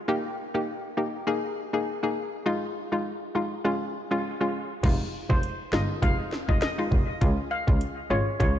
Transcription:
0.08 0.28 A#3 loud
0.08 0.28 D#4 medium
0.08 0.28 G4 loud
0.54 0.72 A#3 medium
0.54 0.72 D#4 medium
0.54 0.72 G4 medium
0.97 1.17 A#3 medium
0.97 1.17 D#4 medium
0.97 1.17 G4 medium
1.27 1.69 A#3 medium
1.27 1.70 D#4 medium
1.27 1.70 G#4 loud
1.73 1.91 A#3 medium
1.73 1.91 D#4 medium
1.73 1.91 G#4 medium
2.03 2.20 A#3 medium
2.03 2.20 D#4 medium
2.03 2.21 G#4 medium
2.46 2.66 G#3 medium
2.46 2.66 D#4 medium
2.46 2.66 F4 loud
2.92 3.09 G#3 medium
2.92 3.10 D#4 medium
2.92 3.10 F4 medium
3.35 3.55 G#3 medium
3.35 3.55 D#4 medium
3.35 3.55 F4 medium
3.64 4.07 G#3 medium
3.64 4.07 C#4 medium
3.64 4.07 F4 loud
4.11 4.28 G#3 medium
4.11 4.28 C#4 medium
4.11 4.29 F4 medium
4.41 4.58 G#3 medium
4.41 4.58 C#4 medium
4.41 4.58 F4 medium
4.83 4.92 F1 loud
4.83 5.03 G#3 loud
4.83 5.04 D#4 medium
4.83 5.04 F4 loud
4.83 kick loud
4.83 closed hi-hat medium
4.83 crash medium
5.30 5.38 F1 loud
5.30 5.47 G#3 medium
5.30 5.47 D#4 medium
5.30 5.47 F4 medium
5.30 5.40 C5 medium
5.30 kick loud
5.43 closed hi-hat medium
5.73 5.81 G1 medium
5.73 5.93 G#3 medium
5.73 5.93 D#4 medium
5.73 5.93 F4 medium
5.73 5.86 D#5 medium
5.73 snare loud
6.02 6.11 F1 loud
6.02 6.45 G#3 medium
6.02 6.45 D#4 medium
6.02 6.45 F4 loud
6.02 6.16 F5 medium
6.02 kick medium
6.02 closed hi-hat medium
6.32 snare medium
6.48 6.57 F1 medium
6.48 6.66 G#3 medium
6.48 6.66 D#4 medium
6.48 6.66 F4 medium
6.48 6.59 D#5 medium
6.48 kick medium
6.62 7.05 D#5 medium
6.62 cross-stick loud
6.62 snare loud
6.62 closed hi-hat medium
6.78 6.96 G#3 medium
6.78 6.96 D#4 medium
6.78 6.96 F4 medium
6.92 7.00 F1 loud
6.92 kick medium
7.21 7.29 C#2 loud
7.21 7.41 G#3 medium
7.21 7.41 C#4 medium
7.21 7.41 F4 loud
7.21 kick loud
7.21 closed hi-hat medium
7.51 7.64 F5 medium
7.67 7.76 C#2 medium
7.67 7.85 G#3 medium
7.67 7.85 C#4 medium
7.67 7.85 F4 medium
7.67 kick loud
7.81 closed hi-hat medium
8.10 8.19 G#1 medium
8.10 8.30 G#3 medium
8.10 8.30 C#4 medium
8.10 8.30 F4 medium
8.10 8.24 C#5 medium
8.40 8.48 C#2 loud
8.40 8.59 G#3 medium
8.40 8.59 C#4 medium
8.40 8.59 F4 loud
8.40 8.53 C#5 medium
8.40 kick medium
8.40 closed hi-hat medium

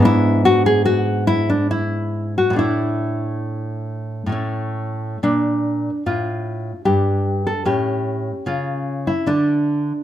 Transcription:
0.00 2.50 G#2 medium
0.00 2.52 B3 medium
0.00 1.48 D4 medium
0.05 0.43 E4 loud
0.45 0.65 F#4 loud
0.66 0.85 G#4 medium
0.85 1.25 F#4 medium
1.27 1.48 E4 medium
1.50 1.70 D4 medium
1.71 2.34 E4 medium
2.38 2.58 F#4 medium
2.50 4.25 A2 medium
2.50 4.28 A3 soft
2.56 4.30 D4 soft
2.56 4.75 E4 medium
4.26 5.16 A2 soft
4.26 5.17 A3 soft
4.32 5.19 C#4 soft
5.23 5.89 A#2 medium
5.23 6.03 D4 medium
6.06 6.71 A2 soft
6.06 6.84 F4 medium
6.85 7.50 G2 soft
6.85 7.62 D4 soft
6.85 7.44 G4 medium
7.47 7.66 A4 medium
7.65 8.31 A2 medium
7.65 9.23 C#4 soft
7.65 8.43 G4 medium
8.46 9.11 C#3 soft
8.46 9.05 F4 medium
9.07 9.28 E4 medium
9.27 9.91 D3 soft
9.27 10.03 D4 medium

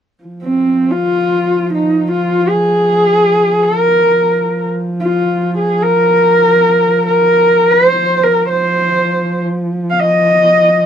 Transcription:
0.24 4.13 F3 soft
0.43 0.92 C4 medium
0.91 1.73 F4 medium
1.73 2.09 D#4 medium
2.12 2.50 F4 medium
2.49 3.65 G#4 medium
3.63 4.66 A#4 medium
4.13 8.01 F3 medium
5.00 5.57 F4 medium
5.58 5.84 G#4 medium
5.82 7.06 A#4 medium
7.07 7.72 A#4 medium
7.70 8.25 C5 medium
8.01 10.86 F3 medium
8.23 8.48 A#4 medium
8.49 9.42 C5 medium
9.90 10.01 F5 medium
10.00 10.86 D#5 medium

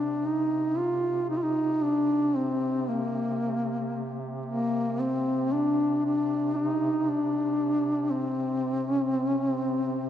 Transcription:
0.00 10.10 C3 soft
0.00 0.28 D4 medium
0.26 0.79 D#4 medium
0.77 1.29 F4 medium
1.30 1.38 D#4 medium
1.37 1.44 F4 medium
1.43 1.84 D#4 medium
1.83 2.37 D4 loud
2.36 2.90 C4 medium
2.88 4.21 A#3 medium
4.46 5.02 A#3 medium
5.00 5.54 C4 medium
5.52 6.05 D4 medium
6.05 6.58 D4 medium
6.56 7.11 D#4 medium
7.09 8.12 D4 medium
8.10 8.85 C4 medium
8.85 9.06 C#4 medium
9.06 9.28 C4 medium
9.28 9.48 C#4 medium
9.48 10.10 C4 medium

